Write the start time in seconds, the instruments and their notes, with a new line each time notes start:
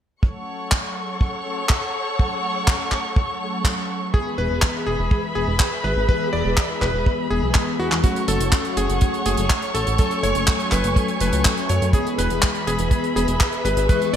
0.23 analog polysynth F#3 A3 C#4 A4, string section A4 C#5 F#5 C#6, kick
0.72 kick, clap
1.21 kick
1.45 analog polysynth F#3 A3 C#4 A4
1.69 kick, clap
2.18 analog polysynth F#3 A3 C#4 A4, kick
2.68 kick, clap
2.92 kick, clap
3.16 kick
3.40 analog polysynth F#3 A3 C#4 A4
3.65 kick, clap
4.13 analog polysynth E3, string section G#4 B4 E5 B5, electric grand piano G#4, kick
4.38 analog synth bass E1, electric grand piano B4
4.50 analog synth bass E1
4.62 kick, clap
4.87 analog synth bass E1, electric grand piano G#4
4.99 analog synth bass E1
5.11 kick
5.35 analog synth bass E1, analog polysynth E3 G#3 B3 G#4, electric grand piano G#4
5.48 analog synth bass E1
5.60 kick, clap
5.84 analog synth bass G#1, electric grand piano B4
5.96 analog synth bass G#1
6.09 analog polysynth E3 G#3 B3 G#4, electric grand piano B4, kick
6.33 analog synth bass E1, electric grand piano D5
6.45 analog synth bass E1
6.57 kick, clap
6.81 analog synth bass E1, electric grand piano B4, kick, clap
6.94 analog synth bass E1
7.06 kick
7.30 analog synth bass E1, analog polysynth E3 G#3 B3 G#4, electric grand piano G#4
7.43 analog synth bass B1
7.54 kick, clap
7.79 analog synth bass E2, electric grand piano F#4
7.92 analog synth bass E2, clap
8.04 analog polysynth F#3 A3 C#4 F#4, string section A3 C#5 F#5 C#6, electric grand piano F#4, kick, closed hi-hat
8.16 closed hi-hat
8.28 analog synth bass F#1, electric grand piano A4, closed hi-hat
8.40 analog synth bass F#1, closed hi-hat
8.52 kick, clap, closed hi-hat
8.65 closed hi-hat
8.77 analog synth bass F#1, electric grand piano G#4, closed hi-hat
8.89 analog synth bass F#1, closed hi-hat
9.01 kick, closed hi-hat
9.14 closed hi-hat
9.26 analog synth bass F#1, analog polysynth F#3 A3 C#4 A4, electric grand piano G#4, closed hi-hat
9.37 analog synth bass F#1, closed hi-hat
9.50 kick, clap, closed hi-hat
9.62 closed hi-hat
9.74 analog synth bass A1, electric grand piano A4, closed hi-hat
9.87 analog synth bass A1, closed hi-hat
9.98 analog polysynth F#3 A3 C#4 A4, electric grand piano A4, string section G#5, kick, closed hi-hat
10.11 closed hi-hat
10.23 analog synth bass F#1, electric grand piano C#5, closed hi-hat
10.35 analog synth bass F#1, closed hi-hat
10.47 kick, clap, closed hi-hat
10.60 closed hi-hat
10.72 analog synth bass F#1, electric grand piano B4, kick, clap, closed hi-hat
10.84 analog synth bass F#1, closed hi-hat
10.96 kick, closed hi-hat
11.08 closed hi-hat
11.21 analog synth bass F#1, analog polysynth F#3 A3 C#4 A4, electric grand piano B4, closed hi-hat
11.33 analog synth bass C#2, closed hi-hat
11.45 kick, clap, closed hi-hat
11.57 closed hi-hat
11.69 analog synth bass F#2, electric grand piano C#5, closed hi-hat
11.82 analog synth bass F#2, closed hi-hat
11.93 analog polysynth E3 G#3 B3, electric grand piano G#4, string section G#4 B4 E5 B5, kick, closed hi-hat
12.07 closed hi-hat
12.18 analog synth bass E1, electric grand piano B4, closed hi-hat
12.30 analog synth bass E1, closed hi-hat
12.42 kick, clap, closed hi-hat
12.55 closed hi-hat
12.67 analog synth bass E1, electric grand piano G#4, closed hi-hat
12.79 analog synth bass E1, closed hi-hat
12.91 kick, closed hi-hat
13.04 closed hi-hat
13.16 analog synth bass E1, analog polysynth E3 G#3 B3 G#4, electric grand piano G#4, closed hi-hat
13.28 analog synth bass E1, closed hi-hat
13.40 kick, clap, closed hi-hat
13.53 closed hi-hat
13.65 analog synth bass G#1, electric grand piano B4, closed hi-hat
13.77 analog synth bass G#1, closed hi-hat
13.89 analog polysynth E3 G#3 B3 G#4, electric grand piano B4, string section C#6, kick, closed hi-hat
14.02 closed hi-hat